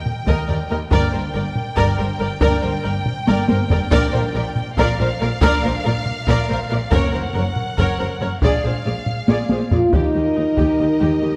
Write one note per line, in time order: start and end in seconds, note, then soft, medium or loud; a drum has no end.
0.00 0.88 G5 medium
0.06 taiko low-mid soft
0.27 0.35 D#2 medium
0.27 0.36 D#2 medium
0.27 0.48 A#4 medium
0.27 0.47 D#5 medium
0.27 taiko medium
0.48 0.57 D#2 soft
0.48 0.58 D#2 soft
0.48 0.57 A#4 soft
0.48 0.56 D5 soft
0.70 0.78 D#2 medium
0.70 0.79 D#2 soft
0.70 0.79 A#4 medium
0.70 0.78 D#5 medium
0.91 1.00 G1 medium
0.91 0.99 G2 medium
0.91 1.07 A#3 medium
0.91 1.07 D4 medium
0.91 1.11 A#4 medium
0.91 1.12 D5 medium
0.91 4.73 G5 medium
0.91 taiko medium
1.13 1.22 G1 soft
1.13 1.21 G2 soft
1.13 1.21 A#4 soft
1.13 1.21 C5 soft
1.34 1.43 G1 medium
1.34 1.43 G2 medium
1.34 1.42 A#4 soft
1.34 1.43 D5 soft
1.56 taiko low-mid soft
1.76 1.86 G1 medium
1.76 1.85 G2 medium
1.76 1.97 A#4 medium
1.76 1.97 D5 medium
1.76 taiko medium
1.98 2.07 G1 soft
1.98 2.07 G2 medium
1.98 2.06 A#4 soft
1.98 2.07 C5 soft
2.19 2.29 G1 soft
2.19 2.28 G2 medium
2.19 2.27 A#4 medium
2.19 2.29 D5 medium
2.41 2.50 G1 medium
2.41 2.50 G2 medium
2.41 2.56 A#3 medium
2.41 2.56 D4 medium
2.41 2.61 A#4 medium
2.41 2.62 D5 medium
2.41 taiko medium
2.62 2.72 G1 medium
2.62 2.71 G2 medium
2.62 2.70 A#4 soft
2.62 2.70 C5 soft
2.83 2.94 G1 medium
2.83 2.93 G2 medium
2.83 2.92 A#4 medium
2.83 2.92 D5 soft
3.06 taiko low-mid medium
3.27 3.36 G1 medium
3.27 3.36 G2 medium
3.27 3.47 A#4 medium
3.27 3.47 D5 medium
3.27 taiko high medium
3.48 3.58 G1 medium
3.48 3.57 G2 medium
3.48 3.57 A#4 medium
3.48 3.56 C5 medium
3.48 taiko high medium
3.70 3.79 G1 medium
3.70 3.79 G2 medium
3.70 3.80 A#4 medium
3.70 3.79 D5 medium
3.70 taiko low medium
3.91 4.00 A#1 medium
3.91 4.52 A#2 medium
3.91 4.00 A#2 medium
3.91 4.07 A#3 medium
3.91 4.07 D4 medium
3.91 4.12 A#4 medium
3.91 4.11 D5 medium
3.91 taiko loud
4.13 4.21 A#1 medium
4.13 4.22 A#2 medium
4.13 4.22 A#4 medium
4.13 4.21 C5 medium
4.34 4.43 A#1 medium
4.34 4.44 A#2 medium
4.34 4.42 A#4 medium
4.34 4.43 D5 medium
4.56 taiko low-mid medium
4.77 4.86 A#1 medium
4.77 4.86 A#2 medium
4.77 4.98 A#4 medium
4.77 4.98 D5 medium
4.77 6.92 F5 medium
4.77 taiko medium
4.99 5.07 A#1 medium
4.99 5.07 A#2 medium
4.99 5.08 A#4 medium
4.99 5.08 C5 medium
5.20 5.29 A#1 medium
5.20 5.29 A#2 medium
5.20 5.28 A#4 medium
5.20 5.29 D5 medium
5.41 5.50 A#1 medium
5.41 5.51 A#2 medium
5.41 5.57 A#3 medium
5.41 5.57 D4 medium
5.41 5.62 A#4 medium
5.41 5.63 D5 medium
5.41 taiko loud
5.63 5.72 A#1 medium
5.63 5.72 A#2 medium
5.63 5.71 A#4 soft
5.63 5.73 C5 medium
5.85 5.93 A#1 medium
5.85 5.94 A#2 medium
5.85 5.93 A#4 medium
5.85 5.94 D5 medium
6.06 taiko low-mid soft
6.27 6.36 A#1 medium
6.27 6.36 A#2 medium
6.27 6.48 A#4 medium
6.27 6.48 D5 medium
6.27 taiko medium
6.50 6.58 A#1 medium
6.50 6.58 A#2 medium
6.50 6.58 A#4 medium
6.50 6.58 C5 medium
6.70 6.79 A#1 medium
6.70 6.79 A#2 medium
6.70 6.78 A#4 medium
6.70 6.80 D5 medium
6.92 7.00 F#1 medium
6.92 7.00 F#2 medium
6.92 7.07 A#3 medium
6.92 7.08 C#4 medium
6.92 7.12 A#4 medium
6.92 7.13 C#5 medium
6.92 8.43 F#5 medium
6.92 taiko loud
7.13 7.22 F#1 medium
7.13 7.22 F#2 medium
7.13 7.21 A#4 soft
7.13 7.23 C5 medium
7.34 7.43 F#1 soft
7.34 7.43 F#2 medium
7.34 7.42 A#4 medium
7.34 7.45 C#5 medium
7.56 taiko low-mid soft
7.78 7.86 F#1 medium
7.78 7.87 F#2 medium
7.78 7.98 A#4 medium
7.78 7.99 C#5 medium
7.78 taiko medium
7.99 8.07 F#1 soft
7.99 8.07 F#2 medium
7.99 8.07 A#4 medium
7.99 8.08 C5 medium
8.21 8.29 F#1 soft
8.21 8.29 F#2 medium
8.21 8.29 A#4 medium
8.21 8.30 C#5 medium
8.42 8.50 A#1 medium
8.42 8.51 A#2 medium
8.42 8.58 G#3 medium
8.42 8.58 D4 medium
8.42 8.63 G#4 medium
8.42 8.63 D5 medium
8.42 9.70 F5 medium
8.42 taiko medium
8.64 8.72 A#1 soft
8.64 8.73 A#2 soft
8.64 8.72 G#4 soft
8.64 8.72 C5 soft
8.85 8.93 A#1 soft
8.85 8.94 A#2 soft
8.85 8.94 G#4 soft
8.85 8.94 D5 soft
9.06 taiko low-mid soft
9.28 9.37 A#1 medium
9.28 9.37 A#2 medium
9.28 9.49 G#4 medium
9.28 9.49 D5 medium
9.28 taiko high medium
9.49 9.58 A#1 soft
9.49 9.59 A#2 soft
9.49 9.58 G#4 soft
9.49 9.59 C5 soft
9.49 taiko high medium
9.71 9.80 A#1 soft
9.71 9.80 A#2 soft
9.71 9.92 F4 medium
9.71 9.80 G#4 soft
9.71 9.80 D5 soft
9.71 taiko low medium
9.93 10.02 D#2 medium
9.93 11.36 D#4 medium
9.93 10.13 G4 soft
9.93 11.36 A#4 medium
9.93 11.36 D#5 soft
9.93 taiko medium
10.15 10.23 D#2 soft
10.15 10.23 G4 soft
10.36 10.44 D#2 soft
10.36 10.45 D#2 soft
10.36 10.44 D#4 soft
10.57 10.66 D#2 soft
10.57 10.77 G4 soft
10.57 taiko medium
10.79 10.87 D#2 soft
10.79 10.88 D#2 soft
10.79 10.87 G4 soft
11.00 11.09 D#2 medium
11.00 11.21 G4 soft
11.22 11.30 D#2 soft
11.22 11.31 D#2 soft
11.22 11.30 G4 soft